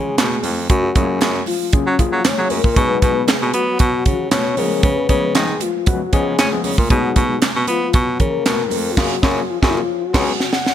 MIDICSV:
0, 0, Header, 1, 5, 480
1, 0, Start_track
1, 0, Key_signature, 6, "major"
1, 0, Tempo, 517241
1, 647, Time_signature, 4, 2, 24, 8
1, 9971, End_track
2, 0, Start_track
2, 0, Title_t, "Soft synth lead"
2, 0, Program_c, 0, 80
2, 0, Note_on_c, 0, 68, 108
2, 409, Note_off_c, 0, 68, 0
2, 650, Note_on_c, 0, 66, 123
2, 1095, Note_off_c, 0, 66, 0
2, 1368, Note_on_c, 0, 65, 103
2, 1607, Note_on_c, 0, 61, 99
2, 1621, Note_off_c, 0, 65, 0
2, 1849, Note_on_c, 0, 65, 103
2, 1862, Note_off_c, 0, 61, 0
2, 2090, Note_on_c, 0, 73, 104
2, 2104, Note_off_c, 0, 65, 0
2, 2325, Note_on_c, 0, 70, 104
2, 2339, Note_off_c, 0, 73, 0
2, 2569, Note_on_c, 0, 71, 123
2, 2583, Note_off_c, 0, 70, 0
2, 3050, Note_on_c, 0, 68, 111
2, 3064, Note_off_c, 0, 71, 0
2, 3282, Note_off_c, 0, 68, 0
2, 3288, Note_on_c, 0, 66, 119
2, 3970, Note_off_c, 0, 66, 0
2, 4013, Note_on_c, 0, 73, 106
2, 4251, Note_on_c, 0, 70, 100
2, 4265, Note_off_c, 0, 73, 0
2, 4492, Note_on_c, 0, 71, 113
2, 4506, Note_off_c, 0, 70, 0
2, 4970, Note_off_c, 0, 71, 0
2, 4973, Note_on_c, 0, 68, 110
2, 5212, Note_on_c, 0, 65, 97
2, 5226, Note_off_c, 0, 68, 0
2, 5447, Note_off_c, 0, 65, 0
2, 5452, Note_on_c, 0, 66, 101
2, 5673, Note_off_c, 0, 66, 0
2, 5693, Note_on_c, 0, 68, 92
2, 6137, Note_off_c, 0, 68, 0
2, 6409, Note_on_c, 0, 66, 127
2, 6854, Note_off_c, 0, 66, 0
2, 7135, Note_on_c, 0, 65, 97
2, 7374, Note_on_c, 0, 66, 101
2, 7387, Note_off_c, 0, 65, 0
2, 7605, Note_off_c, 0, 66, 0
2, 7611, Note_on_c, 0, 70, 127
2, 8269, Note_on_c, 0, 65, 74
2, 8283, Note_off_c, 0, 70, 0
2, 8334, Note_on_c, 0, 66, 102
2, 8348, Note_off_c, 0, 65, 0
2, 8811, Note_off_c, 0, 66, 0
2, 8815, Note_on_c, 0, 65, 90
2, 8896, Note_off_c, 0, 65, 0
2, 8995, Note_on_c, 0, 64, 67
2, 9053, Note_on_c, 0, 65, 94
2, 9066, Note_off_c, 0, 64, 0
2, 9289, Note_on_c, 0, 66, 84
2, 9303, Note_off_c, 0, 65, 0
2, 9768, Note_off_c, 0, 66, 0
2, 9775, Note_on_c, 0, 78, 115
2, 9971, Note_off_c, 0, 78, 0
2, 9971, End_track
3, 0, Start_track
3, 0, Title_t, "Tine electric piano"
3, 0, Program_c, 1, 4
3, 769, Note_on_c, 1, 65, 80
3, 778, Note_on_c, 1, 68, 88
3, 827, Note_off_c, 1, 65, 0
3, 832, Note_off_c, 1, 68, 0
3, 883, Note_on_c, 1, 54, 87
3, 884, Note_on_c, 1, 58, 80
3, 886, Note_on_c, 1, 61, 79
3, 889, Note_on_c, 1, 65, 76
3, 891, Note_on_c, 1, 68, 93
3, 1249, Note_off_c, 1, 54, 0
3, 1250, Note_off_c, 1, 58, 0
3, 1251, Note_off_c, 1, 61, 0
3, 1252, Note_off_c, 1, 65, 0
3, 1253, Note_off_c, 1, 68, 0
3, 1601, Note_on_c, 1, 54, 75
3, 1603, Note_on_c, 1, 58, 66
3, 1605, Note_on_c, 1, 61, 72
3, 1607, Note_on_c, 1, 65, 74
3, 1609, Note_on_c, 1, 68, 82
3, 1730, Note_off_c, 1, 54, 0
3, 1731, Note_off_c, 1, 58, 0
3, 1732, Note_off_c, 1, 61, 0
3, 1733, Note_off_c, 1, 65, 0
3, 1734, Note_off_c, 1, 68, 0
3, 1845, Note_on_c, 1, 54, 91
3, 1849, Note_on_c, 1, 58, 85
3, 1850, Note_on_c, 1, 61, 86
3, 1851, Note_on_c, 1, 65, 84
3, 1854, Note_on_c, 1, 68, 94
3, 2028, Note_off_c, 1, 54, 0
3, 2030, Note_off_c, 1, 58, 0
3, 2031, Note_off_c, 1, 61, 0
3, 2031, Note_off_c, 1, 65, 0
3, 2033, Note_off_c, 1, 68, 0
3, 2209, Note_on_c, 1, 54, 79
3, 2210, Note_on_c, 1, 58, 74
3, 2212, Note_on_c, 1, 61, 74
3, 2215, Note_on_c, 1, 65, 72
3, 2217, Note_on_c, 1, 68, 94
3, 2386, Note_off_c, 1, 54, 0
3, 2387, Note_off_c, 1, 58, 0
3, 2388, Note_off_c, 1, 61, 0
3, 2390, Note_off_c, 1, 65, 0
3, 2390, Note_off_c, 1, 68, 0
3, 2561, Note_on_c, 1, 54, 80
3, 2564, Note_on_c, 1, 56, 72
3, 2566, Note_on_c, 1, 59, 77
3, 2568, Note_on_c, 1, 63, 75
3, 2569, Note_on_c, 1, 68, 92
3, 3040, Note_off_c, 1, 54, 0
3, 3042, Note_off_c, 1, 56, 0
3, 3043, Note_off_c, 1, 59, 0
3, 3044, Note_off_c, 1, 63, 0
3, 3044, Note_off_c, 1, 68, 0
3, 4242, Note_on_c, 1, 53, 87
3, 4244, Note_on_c, 1, 56, 82
3, 4247, Note_on_c, 1, 59, 78
3, 4248, Note_on_c, 1, 61, 79
3, 4249, Note_on_c, 1, 68, 98
3, 4536, Note_off_c, 1, 53, 0
3, 4536, Note_off_c, 1, 56, 0
3, 4538, Note_off_c, 1, 59, 0
3, 4538, Note_off_c, 1, 61, 0
3, 4539, Note_off_c, 1, 68, 0
3, 4607, Note_on_c, 1, 61, 83
3, 4615, Note_on_c, 1, 68, 93
3, 4667, Note_off_c, 1, 61, 0
3, 4671, Note_off_c, 1, 68, 0
3, 4720, Note_on_c, 1, 53, 82
3, 4723, Note_on_c, 1, 56, 77
3, 4725, Note_on_c, 1, 59, 77
3, 4726, Note_on_c, 1, 61, 78
3, 4729, Note_on_c, 1, 68, 93
3, 5087, Note_off_c, 1, 53, 0
3, 5089, Note_off_c, 1, 56, 0
3, 5090, Note_off_c, 1, 59, 0
3, 5091, Note_off_c, 1, 61, 0
3, 5092, Note_off_c, 1, 68, 0
3, 5442, Note_on_c, 1, 53, 75
3, 5444, Note_on_c, 1, 56, 75
3, 5445, Note_on_c, 1, 59, 73
3, 5447, Note_on_c, 1, 61, 72
3, 5450, Note_on_c, 1, 71, 81
3, 5571, Note_off_c, 1, 53, 0
3, 5572, Note_off_c, 1, 56, 0
3, 5572, Note_off_c, 1, 59, 0
3, 5573, Note_off_c, 1, 61, 0
3, 5575, Note_off_c, 1, 71, 0
3, 5683, Note_on_c, 1, 53, 87
3, 5685, Note_on_c, 1, 56, 86
3, 5687, Note_on_c, 1, 59, 88
3, 5689, Note_on_c, 1, 61, 77
3, 5692, Note_on_c, 1, 68, 103
3, 5867, Note_off_c, 1, 53, 0
3, 5868, Note_off_c, 1, 56, 0
3, 5869, Note_off_c, 1, 59, 0
3, 5870, Note_off_c, 1, 61, 0
3, 5872, Note_off_c, 1, 68, 0
3, 6051, Note_on_c, 1, 53, 77
3, 6052, Note_on_c, 1, 56, 72
3, 6055, Note_on_c, 1, 59, 77
3, 6056, Note_on_c, 1, 61, 72
3, 6059, Note_on_c, 1, 68, 90
3, 6227, Note_off_c, 1, 53, 0
3, 6228, Note_off_c, 1, 56, 0
3, 6229, Note_off_c, 1, 59, 0
3, 6230, Note_off_c, 1, 61, 0
3, 6232, Note_off_c, 1, 68, 0
3, 6402, Note_on_c, 1, 54, 84
3, 6404, Note_on_c, 1, 56, 71
3, 6406, Note_on_c, 1, 59, 70
3, 6407, Note_on_c, 1, 63, 73
3, 6409, Note_on_c, 1, 68, 84
3, 6881, Note_off_c, 1, 54, 0
3, 6881, Note_off_c, 1, 56, 0
3, 6883, Note_off_c, 1, 59, 0
3, 6883, Note_off_c, 1, 63, 0
3, 6884, Note_off_c, 1, 68, 0
3, 8320, Note_on_c, 1, 54, 103
3, 8322, Note_on_c, 1, 58, 106
3, 8323, Note_on_c, 1, 61, 104
3, 8326, Note_on_c, 1, 65, 99
3, 8327, Note_on_c, 1, 68, 106
3, 8489, Note_off_c, 1, 54, 0
3, 8490, Note_off_c, 1, 58, 0
3, 8491, Note_off_c, 1, 61, 0
3, 8492, Note_off_c, 1, 65, 0
3, 8493, Note_off_c, 1, 68, 0
3, 8560, Note_on_c, 1, 54, 100
3, 8563, Note_on_c, 1, 58, 112
3, 8564, Note_on_c, 1, 61, 100
3, 8566, Note_on_c, 1, 65, 101
3, 8568, Note_on_c, 1, 68, 102
3, 8729, Note_off_c, 1, 54, 0
3, 8730, Note_off_c, 1, 58, 0
3, 8731, Note_off_c, 1, 61, 0
3, 8732, Note_off_c, 1, 65, 0
3, 8734, Note_off_c, 1, 68, 0
3, 8928, Note_on_c, 1, 54, 106
3, 8930, Note_on_c, 1, 58, 110
3, 8931, Note_on_c, 1, 61, 105
3, 8933, Note_on_c, 1, 65, 106
3, 8936, Note_on_c, 1, 68, 104
3, 9091, Note_off_c, 1, 54, 0
3, 9092, Note_off_c, 1, 58, 0
3, 9093, Note_off_c, 1, 61, 0
3, 9094, Note_off_c, 1, 65, 0
3, 9096, Note_off_c, 1, 68, 0
3, 9409, Note_on_c, 1, 54, 108
3, 9411, Note_on_c, 1, 56, 103
3, 9412, Note_on_c, 1, 59, 110
3, 9414, Note_on_c, 1, 61, 107
3, 9416, Note_on_c, 1, 68, 103
3, 9572, Note_off_c, 1, 54, 0
3, 9573, Note_off_c, 1, 56, 0
3, 9574, Note_off_c, 1, 59, 0
3, 9575, Note_off_c, 1, 61, 0
3, 9576, Note_off_c, 1, 68, 0
3, 9971, End_track
4, 0, Start_track
4, 0, Title_t, "Baritone saxophone"
4, 0, Program_c, 2, 67
4, 0, Note_on_c, 2, 49, 90
4, 124, Note_off_c, 2, 49, 0
4, 165, Note_on_c, 2, 47, 97
4, 362, Note_off_c, 2, 47, 0
4, 405, Note_on_c, 2, 41, 96
4, 601, Note_off_c, 2, 41, 0
4, 648, Note_on_c, 2, 42, 111
4, 843, Note_off_c, 2, 42, 0
4, 889, Note_on_c, 2, 42, 102
4, 1084, Note_off_c, 2, 42, 0
4, 1127, Note_on_c, 2, 42, 110
4, 1322, Note_off_c, 2, 42, 0
4, 1734, Note_on_c, 2, 54, 99
4, 1826, Note_off_c, 2, 54, 0
4, 1972, Note_on_c, 2, 54, 96
4, 2065, Note_off_c, 2, 54, 0
4, 2211, Note_on_c, 2, 54, 97
4, 2304, Note_off_c, 2, 54, 0
4, 2324, Note_on_c, 2, 42, 95
4, 2429, Note_off_c, 2, 42, 0
4, 2452, Note_on_c, 2, 46, 89
4, 2545, Note_off_c, 2, 46, 0
4, 2566, Note_on_c, 2, 47, 121
4, 2762, Note_off_c, 2, 47, 0
4, 2806, Note_on_c, 2, 47, 109
4, 3002, Note_off_c, 2, 47, 0
4, 3172, Note_on_c, 2, 47, 116
4, 3265, Note_off_c, 2, 47, 0
4, 3285, Note_on_c, 2, 59, 101
4, 3482, Note_off_c, 2, 59, 0
4, 3527, Note_on_c, 2, 47, 112
4, 3723, Note_off_c, 2, 47, 0
4, 3767, Note_on_c, 2, 49, 89
4, 3963, Note_off_c, 2, 49, 0
4, 4006, Note_on_c, 2, 47, 98
4, 4202, Note_off_c, 2, 47, 0
4, 4247, Note_on_c, 2, 49, 96
4, 4442, Note_off_c, 2, 49, 0
4, 4484, Note_on_c, 2, 49, 115
4, 4681, Note_off_c, 2, 49, 0
4, 4727, Note_on_c, 2, 49, 113
4, 4923, Note_off_c, 2, 49, 0
4, 4967, Note_on_c, 2, 51, 96
4, 5163, Note_off_c, 2, 51, 0
4, 5689, Note_on_c, 2, 49, 93
4, 5884, Note_off_c, 2, 49, 0
4, 5929, Note_on_c, 2, 61, 100
4, 6032, Note_off_c, 2, 61, 0
4, 6167, Note_on_c, 2, 49, 86
4, 6271, Note_off_c, 2, 49, 0
4, 6293, Note_on_c, 2, 46, 102
4, 6386, Note_off_c, 2, 46, 0
4, 6407, Note_on_c, 2, 47, 108
4, 6603, Note_off_c, 2, 47, 0
4, 6647, Note_on_c, 2, 47, 107
4, 6843, Note_off_c, 2, 47, 0
4, 7014, Note_on_c, 2, 47, 110
4, 7106, Note_off_c, 2, 47, 0
4, 7126, Note_on_c, 2, 59, 102
4, 7322, Note_off_c, 2, 59, 0
4, 7369, Note_on_c, 2, 47, 106
4, 7564, Note_off_c, 2, 47, 0
4, 7609, Note_on_c, 2, 49, 89
4, 7804, Note_off_c, 2, 49, 0
4, 7845, Note_on_c, 2, 47, 92
4, 8086, Note_on_c, 2, 41, 86
4, 8100, Note_off_c, 2, 47, 0
4, 8282, Note_off_c, 2, 41, 0
4, 8326, Note_on_c, 2, 42, 95
4, 8492, Note_off_c, 2, 42, 0
4, 8566, Note_on_c, 2, 42, 112
4, 8732, Note_off_c, 2, 42, 0
4, 8934, Note_on_c, 2, 42, 111
4, 9095, Note_off_c, 2, 42, 0
4, 9412, Note_on_c, 2, 37, 123
4, 9574, Note_off_c, 2, 37, 0
4, 9971, End_track
5, 0, Start_track
5, 0, Title_t, "Drums"
5, 165, Note_on_c, 9, 63, 82
5, 168, Note_on_c, 9, 42, 114
5, 170, Note_on_c, 9, 38, 127
5, 176, Note_on_c, 9, 39, 101
5, 258, Note_off_c, 9, 63, 0
5, 261, Note_off_c, 9, 42, 0
5, 263, Note_off_c, 9, 38, 0
5, 269, Note_off_c, 9, 39, 0
5, 398, Note_on_c, 9, 63, 79
5, 404, Note_on_c, 9, 46, 80
5, 491, Note_off_c, 9, 63, 0
5, 497, Note_off_c, 9, 46, 0
5, 646, Note_on_c, 9, 42, 105
5, 647, Note_on_c, 9, 36, 125
5, 739, Note_off_c, 9, 42, 0
5, 740, Note_off_c, 9, 36, 0
5, 886, Note_on_c, 9, 42, 84
5, 888, Note_on_c, 9, 36, 98
5, 901, Note_on_c, 9, 62, 55
5, 979, Note_off_c, 9, 42, 0
5, 981, Note_off_c, 9, 36, 0
5, 994, Note_off_c, 9, 62, 0
5, 1121, Note_on_c, 9, 63, 76
5, 1126, Note_on_c, 9, 42, 98
5, 1131, Note_on_c, 9, 38, 127
5, 1137, Note_on_c, 9, 39, 105
5, 1213, Note_off_c, 9, 63, 0
5, 1219, Note_off_c, 9, 42, 0
5, 1223, Note_off_c, 9, 38, 0
5, 1230, Note_off_c, 9, 39, 0
5, 1358, Note_on_c, 9, 62, 46
5, 1364, Note_on_c, 9, 46, 79
5, 1450, Note_off_c, 9, 62, 0
5, 1457, Note_off_c, 9, 46, 0
5, 1602, Note_on_c, 9, 42, 85
5, 1608, Note_on_c, 9, 36, 121
5, 1694, Note_off_c, 9, 42, 0
5, 1701, Note_off_c, 9, 36, 0
5, 1847, Note_on_c, 9, 42, 76
5, 1848, Note_on_c, 9, 36, 93
5, 1940, Note_off_c, 9, 42, 0
5, 1941, Note_off_c, 9, 36, 0
5, 2084, Note_on_c, 9, 42, 109
5, 2086, Note_on_c, 9, 38, 127
5, 2088, Note_on_c, 9, 63, 85
5, 2092, Note_on_c, 9, 39, 99
5, 2177, Note_off_c, 9, 42, 0
5, 2179, Note_off_c, 9, 38, 0
5, 2181, Note_off_c, 9, 63, 0
5, 2185, Note_off_c, 9, 39, 0
5, 2321, Note_on_c, 9, 46, 84
5, 2322, Note_on_c, 9, 63, 69
5, 2413, Note_off_c, 9, 46, 0
5, 2414, Note_off_c, 9, 63, 0
5, 2452, Note_on_c, 9, 36, 96
5, 2545, Note_off_c, 9, 36, 0
5, 2565, Note_on_c, 9, 36, 127
5, 2565, Note_on_c, 9, 42, 105
5, 2658, Note_off_c, 9, 36, 0
5, 2658, Note_off_c, 9, 42, 0
5, 2804, Note_on_c, 9, 42, 84
5, 2806, Note_on_c, 9, 36, 101
5, 2820, Note_on_c, 9, 62, 52
5, 2897, Note_off_c, 9, 42, 0
5, 2899, Note_off_c, 9, 36, 0
5, 2913, Note_off_c, 9, 62, 0
5, 3040, Note_on_c, 9, 63, 76
5, 3044, Note_on_c, 9, 42, 105
5, 3049, Note_on_c, 9, 38, 121
5, 3055, Note_on_c, 9, 39, 100
5, 3133, Note_off_c, 9, 63, 0
5, 3137, Note_off_c, 9, 42, 0
5, 3142, Note_off_c, 9, 38, 0
5, 3148, Note_off_c, 9, 39, 0
5, 3279, Note_on_c, 9, 62, 53
5, 3281, Note_on_c, 9, 42, 78
5, 3372, Note_off_c, 9, 62, 0
5, 3374, Note_off_c, 9, 42, 0
5, 3518, Note_on_c, 9, 42, 82
5, 3526, Note_on_c, 9, 36, 123
5, 3611, Note_off_c, 9, 42, 0
5, 3619, Note_off_c, 9, 36, 0
5, 3764, Note_on_c, 9, 42, 75
5, 3765, Note_on_c, 9, 62, 34
5, 3765, Note_on_c, 9, 64, 74
5, 3767, Note_on_c, 9, 36, 95
5, 3856, Note_off_c, 9, 42, 0
5, 3858, Note_off_c, 9, 62, 0
5, 3858, Note_off_c, 9, 64, 0
5, 3860, Note_off_c, 9, 36, 0
5, 4003, Note_on_c, 9, 42, 106
5, 4005, Note_on_c, 9, 38, 123
5, 4007, Note_on_c, 9, 63, 83
5, 4011, Note_on_c, 9, 39, 97
5, 4095, Note_off_c, 9, 42, 0
5, 4097, Note_off_c, 9, 38, 0
5, 4100, Note_off_c, 9, 63, 0
5, 4104, Note_off_c, 9, 39, 0
5, 4241, Note_on_c, 9, 46, 84
5, 4242, Note_on_c, 9, 63, 77
5, 4334, Note_off_c, 9, 46, 0
5, 4335, Note_off_c, 9, 63, 0
5, 4483, Note_on_c, 9, 42, 105
5, 4485, Note_on_c, 9, 36, 127
5, 4576, Note_off_c, 9, 42, 0
5, 4578, Note_off_c, 9, 36, 0
5, 4724, Note_on_c, 9, 42, 87
5, 4727, Note_on_c, 9, 36, 98
5, 4742, Note_on_c, 9, 62, 55
5, 4817, Note_off_c, 9, 42, 0
5, 4819, Note_off_c, 9, 36, 0
5, 4835, Note_off_c, 9, 62, 0
5, 4963, Note_on_c, 9, 42, 91
5, 4963, Note_on_c, 9, 63, 76
5, 4968, Note_on_c, 9, 38, 116
5, 4974, Note_on_c, 9, 39, 98
5, 5056, Note_off_c, 9, 42, 0
5, 5056, Note_off_c, 9, 63, 0
5, 5060, Note_off_c, 9, 38, 0
5, 5067, Note_off_c, 9, 39, 0
5, 5201, Note_on_c, 9, 62, 50
5, 5204, Note_on_c, 9, 42, 76
5, 5294, Note_off_c, 9, 62, 0
5, 5297, Note_off_c, 9, 42, 0
5, 5442, Note_on_c, 9, 42, 85
5, 5448, Note_on_c, 9, 36, 126
5, 5535, Note_off_c, 9, 42, 0
5, 5541, Note_off_c, 9, 36, 0
5, 5686, Note_on_c, 9, 42, 77
5, 5686, Note_on_c, 9, 62, 37
5, 5689, Note_on_c, 9, 36, 96
5, 5778, Note_off_c, 9, 62, 0
5, 5779, Note_off_c, 9, 42, 0
5, 5781, Note_off_c, 9, 36, 0
5, 5926, Note_on_c, 9, 42, 112
5, 5928, Note_on_c, 9, 38, 127
5, 5928, Note_on_c, 9, 63, 78
5, 5934, Note_on_c, 9, 39, 103
5, 6019, Note_off_c, 9, 42, 0
5, 6021, Note_off_c, 9, 38, 0
5, 6021, Note_off_c, 9, 63, 0
5, 6027, Note_off_c, 9, 39, 0
5, 6162, Note_on_c, 9, 46, 81
5, 6163, Note_on_c, 9, 63, 74
5, 6255, Note_off_c, 9, 46, 0
5, 6256, Note_off_c, 9, 63, 0
5, 6293, Note_on_c, 9, 36, 98
5, 6386, Note_off_c, 9, 36, 0
5, 6406, Note_on_c, 9, 42, 105
5, 6407, Note_on_c, 9, 36, 120
5, 6499, Note_off_c, 9, 42, 0
5, 6500, Note_off_c, 9, 36, 0
5, 6643, Note_on_c, 9, 42, 87
5, 6647, Note_on_c, 9, 36, 98
5, 6664, Note_on_c, 9, 62, 60
5, 6736, Note_off_c, 9, 42, 0
5, 6740, Note_off_c, 9, 36, 0
5, 6757, Note_off_c, 9, 62, 0
5, 6882, Note_on_c, 9, 63, 78
5, 6884, Note_on_c, 9, 42, 105
5, 6888, Note_on_c, 9, 38, 127
5, 6895, Note_on_c, 9, 39, 109
5, 6975, Note_off_c, 9, 63, 0
5, 6976, Note_off_c, 9, 42, 0
5, 6981, Note_off_c, 9, 38, 0
5, 6987, Note_off_c, 9, 39, 0
5, 7121, Note_on_c, 9, 62, 53
5, 7124, Note_on_c, 9, 42, 77
5, 7214, Note_off_c, 9, 62, 0
5, 7216, Note_off_c, 9, 42, 0
5, 7363, Note_on_c, 9, 42, 82
5, 7369, Note_on_c, 9, 36, 127
5, 7456, Note_off_c, 9, 42, 0
5, 7461, Note_off_c, 9, 36, 0
5, 7606, Note_on_c, 9, 64, 77
5, 7607, Note_on_c, 9, 42, 76
5, 7609, Note_on_c, 9, 36, 92
5, 7698, Note_off_c, 9, 64, 0
5, 7700, Note_off_c, 9, 42, 0
5, 7702, Note_off_c, 9, 36, 0
5, 7848, Note_on_c, 9, 42, 113
5, 7848, Note_on_c, 9, 63, 86
5, 7850, Note_on_c, 9, 38, 122
5, 7856, Note_on_c, 9, 39, 104
5, 7941, Note_off_c, 9, 42, 0
5, 7941, Note_off_c, 9, 63, 0
5, 7943, Note_off_c, 9, 38, 0
5, 7949, Note_off_c, 9, 39, 0
5, 8079, Note_on_c, 9, 63, 79
5, 8085, Note_on_c, 9, 46, 86
5, 8172, Note_off_c, 9, 63, 0
5, 8177, Note_off_c, 9, 46, 0
5, 8327, Note_on_c, 9, 36, 121
5, 8327, Note_on_c, 9, 49, 92
5, 8330, Note_on_c, 9, 38, 124
5, 8419, Note_off_c, 9, 36, 0
5, 8420, Note_off_c, 9, 49, 0
5, 8423, Note_off_c, 9, 38, 0
5, 8566, Note_on_c, 9, 36, 126
5, 8568, Note_on_c, 9, 38, 121
5, 8659, Note_off_c, 9, 36, 0
5, 8661, Note_off_c, 9, 38, 0
5, 8933, Note_on_c, 9, 36, 105
5, 8935, Note_on_c, 9, 38, 106
5, 9026, Note_off_c, 9, 36, 0
5, 9028, Note_off_c, 9, 38, 0
5, 9412, Note_on_c, 9, 49, 94
5, 9413, Note_on_c, 9, 36, 110
5, 9415, Note_on_c, 9, 38, 121
5, 9505, Note_off_c, 9, 49, 0
5, 9506, Note_off_c, 9, 36, 0
5, 9508, Note_off_c, 9, 38, 0
5, 9655, Note_on_c, 9, 38, 75
5, 9748, Note_off_c, 9, 38, 0
5, 9769, Note_on_c, 9, 38, 96
5, 9862, Note_off_c, 9, 38, 0
5, 9897, Note_on_c, 9, 38, 85
5, 9971, Note_off_c, 9, 38, 0
5, 9971, End_track
0, 0, End_of_file